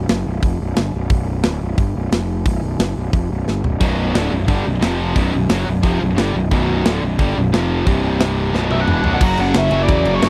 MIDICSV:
0, 0, Header, 1, 6, 480
1, 0, Start_track
1, 0, Tempo, 337838
1, 1576, Time_signature, 4, 2, 24, 8
1, 14621, End_track
2, 0, Start_track
2, 0, Title_t, "Lead electric guitar"
2, 0, Program_c, 0, 29
2, 12381, Note_on_c, 0, 76, 91
2, 12503, Note_off_c, 0, 76, 0
2, 12503, Note_on_c, 0, 78, 94
2, 12966, Note_off_c, 0, 78, 0
2, 12983, Note_on_c, 0, 78, 80
2, 13103, Note_off_c, 0, 78, 0
2, 13116, Note_on_c, 0, 82, 109
2, 13349, Note_on_c, 0, 78, 98
2, 13353, Note_off_c, 0, 82, 0
2, 13604, Note_off_c, 0, 78, 0
2, 13604, Note_on_c, 0, 76, 93
2, 13959, Note_off_c, 0, 76, 0
2, 13961, Note_on_c, 0, 74, 93
2, 14394, Note_off_c, 0, 74, 0
2, 14426, Note_on_c, 0, 73, 88
2, 14534, Note_off_c, 0, 73, 0
2, 14551, Note_on_c, 0, 73, 92
2, 14621, Note_off_c, 0, 73, 0
2, 14621, End_track
3, 0, Start_track
3, 0, Title_t, "Lead electric guitar"
3, 0, Program_c, 1, 29
3, 12375, Note_on_c, 1, 61, 72
3, 12514, Note_off_c, 1, 61, 0
3, 12514, Note_on_c, 1, 62, 71
3, 12975, Note_off_c, 1, 62, 0
3, 12992, Note_on_c, 1, 62, 70
3, 13097, Note_off_c, 1, 62, 0
3, 13112, Note_on_c, 1, 66, 104
3, 13328, Note_off_c, 1, 66, 0
3, 13336, Note_on_c, 1, 62, 85
3, 13581, Note_off_c, 1, 62, 0
3, 13581, Note_on_c, 1, 61, 67
3, 13929, Note_on_c, 1, 58, 63
3, 13938, Note_off_c, 1, 61, 0
3, 14377, Note_off_c, 1, 58, 0
3, 14422, Note_on_c, 1, 58, 71
3, 14511, Note_off_c, 1, 58, 0
3, 14529, Note_on_c, 1, 58, 73
3, 14621, Note_off_c, 1, 58, 0
3, 14621, End_track
4, 0, Start_track
4, 0, Title_t, "Distorted electric guitar"
4, 0, Program_c, 2, 30
4, 5405, Note_on_c, 2, 35, 88
4, 5414, Note_on_c, 2, 42, 101
4, 5420, Note_on_c, 2, 47, 88
4, 5874, Note_off_c, 2, 35, 0
4, 5880, Note_on_c, 2, 38, 89
4, 5884, Note_off_c, 2, 42, 0
4, 5890, Note_off_c, 2, 47, 0
4, 5890, Note_on_c, 2, 45, 93
4, 5897, Note_on_c, 2, 50, 102
4, 6119, Note_off_c, 2, 38, 0
4, 6125, Note_off_c, 2, 45, 0
4, 6125, Note_on_c, 2, 35, 48
4, 6129, Note_off_c, 2, 50, 0
4, 6136, Note_on_c, 2, 42, 64
4, 6322, Note_off_c, 2, 35, 0
4, 6327, Note_off_c, 2, 42, 0
4, 6359, Note_on_c, 2, 43, 85
4, 6360, Note_on_c, 2, 50, 89
4, 6372, Note_on_c, 2, 55, 94
4, 6600, Note_off_c, 2, 43, 0
4, 6600, Note_off_c, 2, 50, 0
4, 6606, Note_off_c, 2, 55, 0
4, 6615, Note_on_c, 2, 35, 60
4, 6619, Note_on_c, 2, 42, 61
4, 6807, Note_off_c, 2, 35, 0
4, 6809, Note_off_c, 2, 42, 0
4, 6835, Note_on_c, 2, 41, 81
4, 6851, Note_on_c, 2, 48, 93
4, 6863, Note_on_c, 2, 53, 105
4, 7317, Note_off_c, 2, 41, 0
4, 7323, Note_on_c, 2, 35, 90
4, 7326, Note_off_c, 2, 48, 0
4, 7332, Note_off_c, 2, 53, 0
4, 7337, Note_on_c, 2, 42, 93
4, 7340, Note_on_c, 2, 47, 98
4, 7554, Note_off_c, 2, 35, 0
4, 7556, Note_off_c, 2, 42, 0
4, 7571, Note_off_c, 2, 47, 0
4, 7571, Note_on_c, 2, 35, 54
4, 7573, Note_on_c, 2, 42, 60
4, 7766, Note_off_c, 2, 35, 0
4, 7766, Note_off_c, 2, 42, 0
4, 7806, Note_on_c, 2, 42, 88
4, 7815, Note_on_c, 2, 49, 86
4, 7825, Note_on_c, 2, 54, 93
4, 8033, Note_off_c, 2, 42, 0
4, 8043, Note_on_c, 2, 35, 60
4, 8045, Note_off_c, 2, 49, 0
4, 8051, Note_on_c, 2, 42, 65
4, 8054, Note_off_c, 2, 54, 0
4, 8241, Note_off_c, 2, 35, 0
4, 8245, Note_off_c, 2, 42, 0
4, 8282, Note_on_c, 2, 41, 92
4, 8295, Note_on_c, 2, 48, 92
4, 8308, Note_on_c, 2, 53, 87
4, 8522, Note_off_c, 2, 41, 0
4, 8526, Note_off_c, 2, 48, 0
4, 8529, Note_on_c, 2, 35, 64
4, 8532, Note_on_c, 2, 42, 69
4, 8535, Note_off_c, 2, 53, 0
4, 8725, Note_off_c, 2, 35, 0
4, 8726, Note_off_c, 2, 42, 0
4, 8756, Note_on_c, 2, 43, 82
4, 8771, Note_on_c, 2, 50, 113
4, 8780, Note_on_c, 2, 55, 96
4, 8998, Note_off_c, 2, 43, 0
4, 9004, Note_on_c, 2, 35, 60
4, 9005, Note_off_c, 2, 50, 0
4, 9011, Note_on_c, 2, 42, 56
4, 9012, Note_off_c, 2, 55, 0
4, 9203, Note_off_c, 2, 35, 0
4, 9206, Note_off_c, 2, 42, 0
4, 9251, Note_on_c, 2, 35, 87
4, 9261, Note_on_c, 2, 42, 96
4, 9274, Note_on_c, 2, 47, 99
4, 9725, Note_off_c, 2, 35, 0
4, 9731, Note_on_c, 2, 38, 87
4, 9732, Note_off_c, 2, 42, 0
4, 9738, Note_on_c, 2, 45, 94
4, 9739, Note_off_c, 2, 47, 0
4, 9745, Note_on_c, 2, 50, 103
4, 9967, Note_off_c, 2, 38, 0
4, 9971, Note_off_c, 2, 45, 0
4, 9974, Note_off_c, 2, 50, 0
4, 9980, Note_on_c, 2, 35, 52
4, 9987, Note_on_c, 2, 42, 61
4, 10171, Note_off_c, 2, 35, 0
4, 10174, Note_off_c, 2, 42, 0
4, 10212, Note_on_c, 2, 43, 89
4, 10220, Note_on_c, 2, 50, 84
4, 10231, Note_on_c, 2, 55, 112
4, 10448, Note_off_c, 2, 43, 0
4, 10452, Note_off_c, 2, 50, 0
4, 10457, Note_on_c, 2, 35, 61
4, 10458, Note_off_c, 2, 55, 0
4, 10461, Note_on_c, 2, 42, 72
4, 10650, Note_off_c, 2, 35, 0
4, 10652, Note_off_c, 2, 42, 0
4, 10700, Note_on_c, 2, 41, 96
4, 10705, Note_on_c, 2, 48, 94
4, 10716, Note_on_c, 2, 53, 106
4, 11161, Note_off_c, 2, 41, 0
4, 11166, Note_on_c, 2, 36, 88
4, 11171, Note_off_c, 2, 48, 0
4, 11177, Note_on_c, 2, 43, 84
4, 11180, Note_off_c, 2, 53, 0
4, 11192, Note_on_c, 2, 48, 94
4, 12125, Note_off_c, 2, 36, 0
4, 12130, Note_on_c, 2, 35, 82
4, 12131, Note_off_c, 2, 43, 0
4, 12138, Note_off_c, 2, 48, 0
4, 12138, Note_on_c, 2, 42, 83
4, 12150, Note_on_c, 2, 47, 84
4, 12599, Note_off_c, 2, 47, 0
4, 12602, Note_off_c, 2, 35, 0
4, 12608, Note_on_c, 2, 40, 83
4, 12611, Note_off_c, 2, 42, 0
4, 12616, Note_on_c, 2, 47, 93
4, 12633, Note_on_c, 2, 52, 105
4, 12844, Note_off_c, 2, 40, 0
4, 12850, Note_off_c, 2, 47, 0
4, 12850, Note_on_c, 2, 35, 73
4, 12858, Note_off_c, 2, 52, 0
4, 12858, Note_on_c, 2, 42, 70
4, 12868, Note_on_c, 2, 47, 86
4, 13055, Note_off_c, 2, 42, 0
4, 13067, Note_off_c, 2, 35, 0
4, 13072, Note_on_c, 2, 42, 85
4, 13095, Note_off_c, 2, 47, 0
4, 13096, Note_on_c, 2, 49, 101
4, 13123, Note_on_c, 2, 54, 104
4, 13789, Note_off_c, 2, 42, 0
4, 13789, Note_off_c, 2, 54, 0
4, 13795, Note_on_c, 2, 54, 73
4, 13801, Note_off_c, 2, 49, 0
4, 13827, Note_on_c, 2, 49, 70
4, 13853, Note_on_c, 2, 42, 75
4, 14502, Note_off_c, 2, 42, 0
4, 14519, Note_on_c, 2, 42, 95
4, 14525, Note_off_c, 2, 49, 0
4, 14553, Note_on_c, 2, 49, 85
4, 14567, Note_off_c, 2, 54, 0
4, 14572, Note_on_c, 2, 54, 97
4, 14621, Note_off_c, 2, 42, 0
4, 14621, Note_off_c, 2, 49, 0
4, 14621, Note_off_c, 2, 54, 0
4, 14621, End_track
5, 0, Start_track
5, 0, Title_t, "Picked electric bass"
5, 0, Program_c, 3, 34
5, 129, Note_on_c, 3, 30, 83
5, 356, Note_off_c, 3, 30, 0
5, 375, Note_on_c, 3, 23, 81
5, 599, Note_off_c, 3, 23, 0
5, 607, Note_on_c, 3, 29, 102
5, 835, Note_off_c, 3, 29, 0
5, 854, Note_on_c, 3, 23, 81
5, 1078, Note_off_c, 3, 23, 0
5, 1091, Note_on_c, 3, 31, 76
5, 1317, Note_off_c, 3, 31, 0
5, 1335, Note_on_c, 3, 23, 78
5, 1546, Note_off_c, 3, 23, 0
5, 1555, Note_on_c, 3, 23, 85
5, 2011, Note_off_c, 3, 23, 0
5, 2057, Note_on_c, 3, 26, 92
5, 2280, Note_off_c, 3, 26, 0
5, 2291, Note_on_c, 3, 23, 83
5, 2516, Note_off_c, 3, 23, 0
5, 2522, Note_on_c, 3, 31, 95
5, 2751, Note_off_c, 3, 31, 0
5, 2775, Note_on_c, 3, 23, 85
5, 2998, Note_off_c, 3, 23, 0
5, 3012, Note_on_c, 3, 29, 81
5, 3459, Note_off_c, 3, 29, 0
5, 3489, Note_on_c, 3, 23, 85
5, 3715, Note_off_c, 3, 23, 0
5, 3731, Note_on_c, 3, 23, 71
5, 3956, Note_off_c, 3, 23, 0
5, 3966, Note_on_c, 3, 30, 93
5, 4193, Note_off_c, 3, 30, 0
5, 4205, Note_on_c, 3, 23, 75
5, 4433, Note_off_c, 3, 23, 0
5, 4446, Note_on_c, 3, 29, 86
5, 4673, Note_off_c, 3, 29, 0
5, 4695, Note_on_c, 3, 23, 80
5, 4918, Note_off_c, 3, 23, 0
5, 4938, Note_on_c, 3, 31, 71
5, 5159, Note_off_c, 3, 31, 0
5, 5180, Note_on_c, 3, 23, 77
5, 5397, Note_off_c, 3, 23, 0
5, 5406, Note_on_c, 3, 23, 93
5, 5856, Note_off_c, 3, 23, 0
5, 5897, Note_on_c, 3, 26, 90
5, 6119, Note_off_c, 3, 26, 0
5, 6125, Note_on_c, 3, 23, 79
5, 6353, Note_off_c, 3, 23, 0
5, 6363, Note_on_c, 3, 31, 94
5, 6592, Note_off_c, 3, 31, 0
5, 6614, Note_on_c, 3, 23, 80
5, 6838, Note_off_c, 3, 23, 0
5, 6866, Note_on_c, 3, 29, 78
5, 7308, Note_off_c, 3, 29, 0
5, 7324, Note_on_c, 3, 23, 77
5, 7553, Note_off_c, 3, 23, 0
5, 7576, Note_on_c, 3, 23, 71
5, 7799, Note_off_c, 3, 23, 0
5, 7812, Note_on_c, 3, 30, 94
5, 8037, Note_off_c, 3, 30, 0
5, 8054, Note_on_c, 3, 23, 83
5, 8278, Note_off_c, 3, 23, 0
5, 8286, Note_on_c, 3, 29, 98
5, 8514, Note_off_c, 3, 29, 0
5, 8538, Note_on_c, 3, 23, 83
5, 8744, Note_off_c, 3, 23, 0
5, 8752, Note_on_c, 3, 31, 80
5, 8987, Note_off_c, 3, 31, 0
5, 9002, Note_on_c, 3, 23, 88
5, 9232, Note_off_c, 3, 23, 0
5, 9252, Note_on_c, 3, 23, 83
5, 9701, Note_off_c, 3, 23, 0
5, 9737, Note_on_c, 3, 26, 92
5, 9961, Note_off_c, 3, 26, 0
5, 9969, Note_on_c, 3, 23, 85
5, 10196, Note_off_c, 3, 23, 0
5, 10218, Note_on_c, 3, 31, 100
5, 10441, Note_off_c, 3, 31, 0
5, 10452, Note_on_c, 3, 23, 83
5, 10678, Note_off_c, 3, 23, 0
5, 10708, Note_on_c, 3, 29, 83
5, 11150, Note_off_c, 3, 29, 0
5, 11174, Note_on_c, 3, 24, 83
5, 12079, Note_off_c, 3, 24, 0
5, 12118, Note_on_c, 3, 23, 96
5, 12574, Note_off_c, 3, 23, 0
5, 12614, Note_on_c, 3, 28, 77
5, 12834, Note_off_c, 3, 28, 0
5, 12842, Note_on_c, 3, 23, 93
5, 13072, Note_off_c, 3, 23, 0
5, 13085, Note_on_c, 3, 30, 96
5, 13310, Note_off_c, 3, 30, 0
5, 13331, Note_on_c, 3, 30, 86
5, 13552, Note_off_c, 3, 30, 0
5, 13563, Note_on_c, 3, 30, 98
5, 13788, Note_off_c, 3, 30, 0
5, 13797, Note_on_c, 3, 30, 103
5, 14024, Note_off_c, 3, 30, 0
5, 14043, Note_on_c, 3, 40, 103
5, 14267, Note_off_c, 3, 40, 0
5, 14284, Note_on_c, 3, 30, 96
5, 14507, Note_off_c, 3, 30, 0
5, 14514, Note_on_c, 3, 30, 93
5, 14621, Note_off_c, 3, 30, 0
5, 14621, End_track
6, 0, Start_track
6, 0, Title_t, "Drums"
6, 125, Note_on_c, 9, 46, 52
6, 132, Note_on_c, 9, 38, 106
6, 267, Note_off_c, 9, 46, 0
6, 274, Note_off_c, 9, 38, 0
6, 606, Note_on_c, 9, 36, 98
6, 609, Note_on_c, 9, 46, 54
6, 748, Note_off_c, 9, 36, 0
6, 751, Note_off_c, 9, 46, 0
6, 1083, Note_on_c, 9, 46, 47
6, 1090, Note_on_c, 9, 38, 101
6, 1225, Note_off_c, 9, 46, 0
6, 1232, Note_off_c, 9, 38, 0
6, 1559, Note_on_c, 9, 46, 53
6, 1564, Note_on_c, 9, 36, 110
6, 1701, Note_off_c, 9, 46, 0
6, 1706, Note_off_c, 9, 36, 0
6, 2034, Note_on_c, 9, 46, 55
6, 2042, Note_on_c, 9, 38, 120
6, 2177, Note_off_c, 9, 46, 0
6, 2184, Note_off_c, 9, 38, 0
6, 2527, Note_on_c, 9, 36, 93
6, 2528, Note_on_c, 9, 46, 56
6, 2669, Note_off_c, 9, 36, 0
6, 2671, Note_off_c, 9, 46, 0
6, 3013, Note_on_c, 9, 46, 51
6, 3020, Note_on_c, 9, 38, 100
6, 3155, Note_off_c, 9, 46, 0
6, 3162, Note_off_c, 9, 38, 0
6, 3490, Note_on_c, 9, 36, 112
6, 3496, Note_on_c, 9, 46, 64
6, 3632, Note_off_c, 9, 36, 0
6, 3638, Note_off_c, 9, 46, 0
6, 3970, Note_on_c, 9, 46, 60
6, 3977, Note_on_c, 9, 38, 118
6, 4112, Note_off_c, 9, 46, 0
6, 4119, Note_off_c, 9, 38, 0
6, 4450, Note_on_c, 9, 36, 98
6, 4454, Note_on_c, 9, 46, 50
6, 4592, Note_off_c, 9, 36, 0
6, 4596, Note_off_c, 9, 46, 0
6, 4943, Note_on_c, 9, 38, 48
6, 5085, Note_off_c, 9, 38, 0
6, 5174, Note_on_c, 9, 43, 72
6, 5316, Note_off_c, 9, 43, 0
6, 5409, Note_on_c, 9, 36, 113
6, 5412, Note_on_c, 9, 46, 58
6, 5412, Note_on_c, 9, 55, 82
6, 5551, Note_off_c, 9, 36, 0
6, 5554, Note_off_c, 9, 46, 0
6, 5554, Note_off_c, 9, 55, 0
6, 5893, Note_on_c, 9, 46, 59
6, 5901, Note_on_c, 9, 38, 114
6, 6036, Note_off_c, 9, 46, 0
6, 6043, Note_off_c, 9, 38, 0
6, 6369, Note_on_c, 9, 36, 93
6, 6372, Note_on_c, 9, 46, 52
6, 6511, Note_off_c, 9, 36, 0
6, 6514, Note_off_c, 9, 46, 0
6, 6849, Note_on_c, 9, 46, 55
6, 6856, Note_on_c, 9, 38, 98
6, 6991, Note_off_c, 9, 46, 0
6, 6998, Note_off_c, 9, 38, 0
6, 7329, Note_on_c, 9, 36, 100
6, 7338, Note_on_c, 9, 46, 61
6, 7472, Note_off_c, 9, 36, 0
6, 7480, Note_off_c, 9, 46, 0
6, 7805, Note_on_c, 9, 46, 67
6, 7812, Note_on_c, 9, 38, 116
6, 7947, Note_off_c, 9, 46, 0
6, 7954, Note_off_c, 9, 38, 0
6, 8287, Note_on_c, 9, 46, 54
6, 8289, Note_on_c, 9, 36, 89
6, 8429, Note_off_c, 9, 46, 0
6, 8431, Note_off_c, 9, 36, 0
6, 8775, Note_on_c, 9, 46, 50
6, 8782, Note_on_c, 9, 38, 99
6, 8917, Note_off_c, 9, 46, 0
6, 8924, Note_off_c, 9, 38, 0
6, 9255, Note_on_c, 9, 36, 99
6, 9260, Note_on_c, 9, 46, 52
6, 9397, Note_off_c, 9, 36, 0
6, 9403, Note_off_c, 9, 46, 0
6, 9736, Note_on_c, 9, 46, 51
6, 9743, Note_on_c, 9, 38, 118
6, 9878, Note_off_c, 9, 46, 0
6, 9885, Note_off_c, 9, 38, 0
6, 10216, Note_on_c, 9, 36, 106
6, 10217, Note_on_c, 9, 46, 51
6, 10358, Note_off_c, 9, 36, 0
6, 10359, Note_off_c, 9, 46, 0
6, 10703, Note_on_c, 9, 46, 44
6, 10710, Note_on_c, 9, 38, 96
6, 10845, Note_off_c, 9, 46, 0
6, 10852, Note_off_c, 9, 38, 0
6, 11178, Note_on_c, 9, 36, 97
6, 11183, Note_on_c, 9, 46, 55
6, 11320, Note_off_c, 9, 36, 0
6, 11325, Note_off_c, 9, 46, 0
6, 11651, Note_on_c, 9, 46, 56
6, 11658, Note_on_c, 9, 38, 119
6, 11793, Note_off_c, 9, 46, 0
6, 11800, Note_off_c, 9, 38, 0
6, 12141, Note_on_c, 9, 38, 57
6, 12283, Note_off_c, 9, 38, 0
6, 12370, Note_on_c, 9, 48, 63
6, 12512, Note_off_c, 9, 48, 0
6, 12611, Note_on_c, 9, 45, 78
6, 12754, Note_off_c, 9, 45, 0
6, 12841, Note_on_c, 9, 43, 82
6, 12984, Note_off_c, 9, 43, 0
6, 13079, Note_on_c, 9, 49, 127
6, 13086, Note_on_c, 9, 36, 127
6, 13221, Note_off_c, 9, 49, 0
6, 13228, Note_off_c, 9, 36, 0
6, 13318, Note_on_c, 9, 51, 69
6, 13460, Note_off_c, 9, 51, 0
6, 13555, Note_on_c, 9, 51, 101
6, 13562, Note_on_c, 9, 38, 127
6, 13697, Note_off_c, 9, 51, 0
6, 13704, Note_off_c, 9, 38, 0
6, 13791, Note_on_c, 9, 51, 77
6, 13933, Note_off_c, 9, 51, 0
6, 14044, Note_on_c, 9, 51, 106
6, 14046, Note_on_c, 9, 36, 103
6, 14186, Note_off_c, 9, 51, 0
6, 14188, Note_off_c, 9, 36, 0
6, 14283, Note_on_c, 9, 51, 78
6, 14426, Note_off_c, 9, 51, 0
6, 14522, Note_on_c, 9, 51, 99
6, 14529, Note_on_c, 9, 38, 95
6, 14621, Note_off_c, 9, 38, 0
6, 14621, Note_off_c, 9, 51, 0
6, 14621, End_track
0, 0, End_of_file